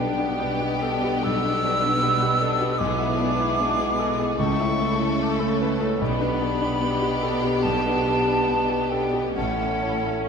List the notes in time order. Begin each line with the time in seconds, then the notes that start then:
Already playing: B1 B2 G3 B3 D4 G4 G5
0.00 B3
0.17 B3 D4
0.37 G3 B3
0.59 B3 G4
0.81 D4 A4
1.03 B3 G4
1.23 B1 G3 E6
1.43 B3 D4
1.63 B3 D4
1.83 B3 D4
2.01 G3 B3
2.20 B3 G4
2.39 D4 A4
2.59 B3 G4
2.78 B1 G#3 E4 G#4 D6
2.98 B3 E4
3.18 B3 D4
3.40 E4
3.58 B3 D4
3.77 B3 G#4
3.98 G#3 A4
4.19 B3 G#4
4.38 C#2 C#3 A3 A4 C#6
4.60 C#4 E4
4.80 A3 E4
4.99 C#4 E4
5.19 A3 D6
5.31 C#6
5.39 C#4 A4 B5
5.48 C#6
5.61 E4 B4
5.81 C#4 A4
6.00 B1 B2 G3 B3 G4 B5
6.21 B3 D4
6.40 B3 D4
6.61 B3 D4
6.80 G3 B3
7.02 B3 G4
7.22 D4 A4
7.44 B3 G4
7.63 B1 G3 A5
7.84 B3 D4
8.04 B3 D4
8.26 B3 D4
8.47 G3 B3
8.70 B3 G4
8.90 D4 A4 G5
9.14 B3 G4
9.35 A1 A2 A3 C#4 A4 F#5
9.61 C#4 E4
9.83 C#4 E4
10.06 C#4 E4